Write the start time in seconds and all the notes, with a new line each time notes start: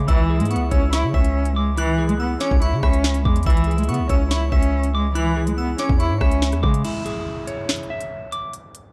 0.08 C#2 E3 E4 E6, kick, closed hi-hat
0.30 G#4
0.40 G#2 G#3, closed hi-hat
0.45 closed hi-hat
0.51 B3 C#6, closed hi-hat
0.56 C#2, closed hi-hat
0.71 C#2 C#4 C#5 E6, kick, closed hi-hat
0.93 E4 C#6, snare, closed hi-hat
1.03 C#3
1.14 C#2 C#4 E5 E6, kick
1.24 closed hi-hat
1.45 closed hi-hat
1.56 G#3 D6
1.77 E3 E4 F#6, closed hi-hat
1.98 G#4
2.09 G#3, closed hi-hat
2.20 B3 E6
2.40 C#4 C#5 D6, snare, closed hi-hat
2.51 C#2, kick
2.62 E4 C#6, closed hi-hat
2.72 C#3
2.83 C#2 C#4 E5 B5, kick, cross-stick
2.93 closed hi-hat
3.04 snare
3.14 closed hi-hat
3.25 E2 G#3 D6, kick
3.36 closed hi-hat
3.43 C#2 E3 E4 E6, kick, closed hi-hat
3.50 closed hi-hat
3.57 closed hi-hat
3.64 G#4, closed hi-hat
3.71 closed hi-hat
3.78 G#3, closed hi-hat
3.83 closed hi-hat
3.89 C#3 B3 C#6, closed hi-hat
3.94 closed hi-hat
3.99 C#2
4.09 C#2 C#4 C#5 E6, kick, closed hi-hat
4.31 E4 C#6, snare, closed hi-hat
4.52 C#2 C#4 E5 E6, kick
4.63 closed hi-hat
4.83 closed hi-hat
4.94 G#3 D6
5.15 E3 E4 F#6, closed hi-hat
5.37 G#4
5.47 G#3, closed hi-hat
5.58 B3 E6
5.78 C#4 C#5 D6, snare, closed hi-hat
5.89 E2, kick
6.00 E4 C#6, closed hi-hat
6.11 G#2
6.21 C#2 C#4 E5 B5, kick, cross-stick
6.31 closed hi-hat
6.42 snare
6.52 E2, cross-stick, closed hi-hat
6.63 C#3 G#3 D6, kick
6.74 closed hi-hat
6.84 E4, closed hi-hat, crash, downlifter
7.06 G#4, closed hi-hat
7.47 C#5, closed hi-hat
7.69 snare, closed hi-hat
7.76 closed hi-hat
7.83 closed hi-hat
7.90 E5
8.01 closed hi-hat
8.32 D6, closed hi-hat
8.53 closed hi-hat
8.75 closed hi-hat